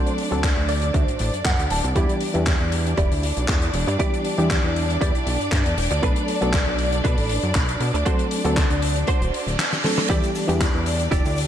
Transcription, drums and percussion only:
0.06 closed hi-hat
0.18 open hi-hat
0.32 closed hi-hat
0.43 kick, clap, closed hi-hat
0.69 open hi-hat
0.82 closed hi-hat
0.94 kick, closed hi-hat
1.08 closed hi-hat
1.19 open hi-hat
1.34 closed hi-hat
1.44 kick, clap, closed hi-hat
1.59 closed hi-hat
1.70 open hi-hat
1.84 closed hi-hat
1.96 kick, closed hi-hat
2.09 closed hi-hat
2.21 open hi-hat
2.34 closed hi-hat
2.46 kick, clap, closed hi-hat
2.72 open hi-hat
2.86 closed hi-hat
2.97 kick, closed hi-hat
3.12 open hi-hat
3.23 open hi-hat
3.37 closed hi-hat
3.48 kick, clap, closed hi-hat
3.62 closed hi-hat
3.74 open hi-hat
3.88 closed hi-hat
4.00 kick, closed hi-hat
4.14 closed hi-hat
4.25 open hi-hat
4.39 closed hi-hat
4.50 kick, clap, closed hi-hat
4.76 open hi-hat
4.90 closed hi-hat
5.01 kick, closed hi-hat
5.15 closed hi-hat
5.27 open hi-hat
5.41 closed hi-hat
5.52 kick, clap, closed hi-hat
5.66 closed hi-hat
5.78 open hi-hat
5.91 closed hi-hat
6.03 kick, closed hi-hat
6.16 closed hi-hat
6.28 open hi-hat
6.42 closed hi-hat
6.53 kick, clap, closed hi-hat
6.79 open hi-hat
6.92 closed hi-hat
7.05 kick, closed hi-hat
7.18 open hi-hat
7.29 open hi-hat
7.42 closed hi-hat
7.54 kick, clap, closed hi-hat
7.69 closed hi-hat
7.80 open hi-hat
7.95 closed hi-hat
8.06 kick, closed hi-hat
8.19 closed hi-hat
8.31 open hi-hat
8.45 closed hi-hat
8.57 kick, clap, closed hi-hat
8.70 closed hi-hat
8.82 open hi-hat
8.96 closed hi-hat
9.07 kick, closed hi-hat
9.22 closed hi-hat
9.34 open hi-hat
9.48 closed hi-hat
9.59 snare, clap, closed hi-hat
9.72 snare, closed hi-hat
9.84 snare, open hi-hat
9.97 snare, open hi-hat
10.10 kick, closed hi-hat, shaker
10.23 closed hi-hat, shaker
10.35 open hi-hat, shaker
10.49 closed hi-hat, shaker
10.61 kick, clap, closed hi-hat, shaker
10.86 open hi-hat, shaker
10.99 closed hi-hat, shaker
11.11 kick, closed hi-hat, shaker
11.25 open hi-hat, shaker
11.37 open hi-hat, shaker

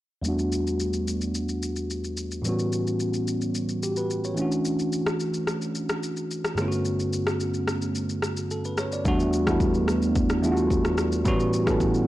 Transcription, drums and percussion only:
0.24 shaker
0.39 shaker
0.52 shaker
0.67 shaker
0.80 shaker
0.93 shaker
1.08 shaker
1.21 shaker
1.35 shaker
1.49 shaker
1.63 shaker
1.76 shaker
1.90 shaker
2.04 shaker
2.17 shaker
2.31 shaker
2.45 shaker
2.59 shaker
2.72 shaker
2.87 shaker
3.00 shaker
3.14 shaker
3.28 shaker
3.41 shaker
3.55 shaker
3.69 shaker
3.83 shaker
3.96 shaker
4.10 shaker
4.24 shaker
4.37 shaker
4.52 shaker
4.65 shaker
4.79 shaker
4.93 shaker
5.07 cross-stick, shaker
5.20 shaker
5.34 shaker
5.47 cross-stick, shaker
5.62 shaker
5.75 shaker
5.89 cross-stick, shaker
6.03 shaker
6.17 shaker
6.31 shaker
6.45 cross-stick, shaker
6.58 cross-stick, shaker
6.72 shaker
6.85 shaker
7.00 shaker
7.13 shaker
7.27 cross-stick, shaker
7.40 shaker
7.54 shaker
7.68 cross-stick, shaker
7.82 shaker
7.95 shaker
8.09 shaker
8.22 cross-stick, shaker
8.37 shaker
8.51 shaker
8.65 shaker
8.78 cross-stick, shaker
8.92 shaker
9.05 kick, shaker
9.20 shaker
9.33 shaker
9.47 kick, cross-stick, shaker
9.60 kick, shaker
9.74 shaker
9.88 cross-stick, shaker
10.02 shaker
10.15 kick, shaker
10.30 cross-stick, shaker
10.44 shaker
10.57 shaker
10.70 kick, shaker
10.85 cross-stick, shaker
10.98 cross-stick, shaker
11.12 shaker
11.25 kick, shaker
11.40 shaker
11.53 shaker
11.67 kick, cross-stick, shaker
11.80 kick, shaker
11.94 shaker

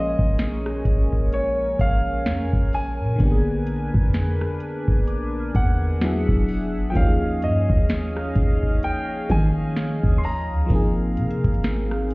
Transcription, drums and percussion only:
0.19 kick
0.38 snare, closed hi-hat
0.66 cross-stick
0.85 kick, closed hi-hat
1.13 kick
1.32 closed hi-hat
1.79 kick, closed hi-hat
2.26 snare, closed hi-hat
2.53 kick
2.73 open hi-hat
3.20 kick, closed hi-hat
3.67 closed hi-hat
3.94 kick
4.14 snare, closed hi-hat
4.41 cross-stick
4.60 closed hi-hat
4.88 kick
5.07 closed hi-hat
5.55 kick, closed hi-hat
6.01 snare, closed hi-hat
6.29 kick
6.48 open hi-hat
6.95 kick, closed hi-hat
7.42 closed hi-hat
7.70 kick
7.89 snare, closed hi-hat
8.17 cross-stick
8.36 kick, closed hi-hat
8.63 kick
8.83 closed hi-hat
9.30 kick, closed hi-hat
9.76 snare, closed hi-hat
10.04 kick
10.24 open hi-hat
10.70 kick, closed hi-hat
11.17 closed hi-hat
11.31 closed hi-hat
11.44 kick, closed hi-hat
11.54 closed hi-hat
11.64 snare, closed hi-hat
11.91 cross-stick
12.10 closed hi-hat

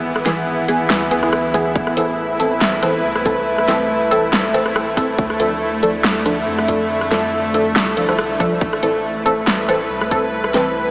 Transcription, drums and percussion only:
0.16 cross-stick
0.26 snare, closed hi-hat
0.68 closed hi-hat
0.90 snare, closed hi-hat
1.11 closed hi-hat
1.23 cross-stick
1.33 cross-stick
1.54 kick, cross-stick, closed hi-hat
1.76 kick
1.87 cross-stick
1.97 closed hi-hat
2.40 closed hi-hat
2.61 snare, closed hi-hat
2.83 cross-stick, closed hi-hat
3.15 cross-stick
3.25 kick, closed hi-hat
3.58 cross-stick
3.68 snare, closed hi-hat
4.11 closed hi-hat
4.33 snare, closed hi-hat
4.54 closed hi-hat
4.66 cross-stick
4.76 cross-stick
4.97 kick, cross-stick, closed hi-hat
5.18 kick
5.30 cross-stick
5.40 closed hi-hat
5.83 closed hi-hat
6.04 snare, closed hi-hat
6.26 cross-stick, closed hi-hat
6.58 cross-stick
6.68 kick, closed hi-hat
7.01 cross-stick
7.11 snare, closed hi-hat
7.54 closed hi-hat
7.76 snare, closed hi-hat
7.97 closed hi-hat
8.09 cross-stick
8.19 cross-stick
8.40 kick, cross-stick, closed hi-hat
8.61 kick
8.73 cross-stick
8.83 closed hi-hat
9.26 closed hi-hat
9.47 snare, closed hi-hat
9.69 cross-stick, closed hi-hat
10.01 cross-stick
10.11 kick, closed hi-hat
10.44 cross-stick
10.54 snare, closed hi-hat

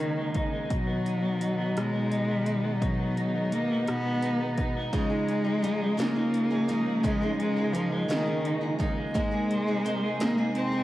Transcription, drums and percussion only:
0.00 closed hi-hat
0.34 kick, closed hi-hat
0.70 kick, closed hi-hat
1.06 closed hi-hat
1.41 closed hi-hat
1.77 cross-stick, closed hi-hat
2.12 closed hi-hat
2.46 closed hi-hat
2.82 kick, closed hi-hat
3.17 closed hi-hat
3.52 closed hi-hat
3.88 cross-stick, closed hi-hat
4.22 closed hi-hat
4.58 kick, closed hi-hat
4.93 kick, closed hi-hat
5.29 closed hi-hat
5.64 closed hi-hat
5.99 snare, closed hi-hat
6.34 closed hi-hat
6.69 closed hi-hat
7.04 kick, closed hi-hat
7.40 closed hi-hat
7.75 closed hi-hat
8.10 snare, closed hi-hat
8.45 closed hi-hat
8.80 kick, closed hi-hat
9.15 kick, closed hi-hat
9.51 closed hi-hat
9.86 closed hi-hat
10.20 snare, closed hi-hat
10.55 closed hi-hat

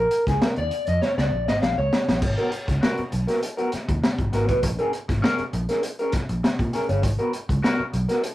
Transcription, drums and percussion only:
0.11 closed hi-hat
0.27 kick, snare, closed hi-hat
0.42 snare
0.56 closed hi-hat
0.71 closed hi-hat
0.87 closed hi-hat
1.02 snare
1.18 snare
1.48 snare
1.62 snare
1.93 snare
2.09 snare
2.22 kick, crash
2.37 closed hi-hat
2.52 closed hi-hat
2.68 kick, snare, closed hi-hat
2.83 snare
2.97 closed hi-hat
3.12 closed hi-hat
3.28 snare, closed hi-hat
3.43 closed hi-hat
3.58 closed hi-hat
3.72 snare, closed hi-hat
3.89 kick, closed hi-hat
4.04 snare
4.19 kick, closed hi-hat
4.33 snare, closed hi-hat
4.49 kick, closed hi-hat
4.63 kick, closed hi-hat
4.79 closed hi-hat
4.93 closed hi-hat
5.09 kick, snare, closed hi-hat
5.24 snare
5.38 closed hi-hat
5.53 closed hi-hat
5.69 snare, closed hi-hat
5.83 closed hi-hat
5.99 closed hi-hat
6.12 kick, snare, closed hi-hat
6.29 closed hi-hat
6.44 snare
6.59 kick, closed hi-hat
6.73 snare, closed hi-hat
6.89 closed hi-hat
7.03 kick, closed hi-hat
7.19 closed hi-hat
7.33 closed hi-hat
7.49 kick, closed hi-hat
7.64 snare
7.93 closed hi-hat
8.09 snare, closed hi-hat
8.23 closed hi-hat

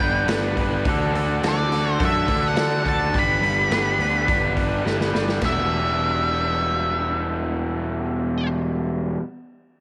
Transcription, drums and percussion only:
0.00 kick
0.28 snare, open hi-hat
0.57 kick, open hi-hat
0.85 kick, open hi-hat
1.15 open hi-hat
1.43 snare, open hi-hat
1.72 open hi-hat
2.00 kick, open hi-hat
2.28 kick, open hi-hat
2.56 snare, open hi-hat
2.85 kick, open hi-hat
3.14 kick, open hi-hat
3.43 open hi-hat
3.71 snare, open hi-hat
4.00 open hi-hat
4.28 kick, open hi-hat
4.57 kick, open hi-hat
4.86 snare
5.01 snare
5.15 snare
5.29 snare
5.42 kick, snare, ride bell

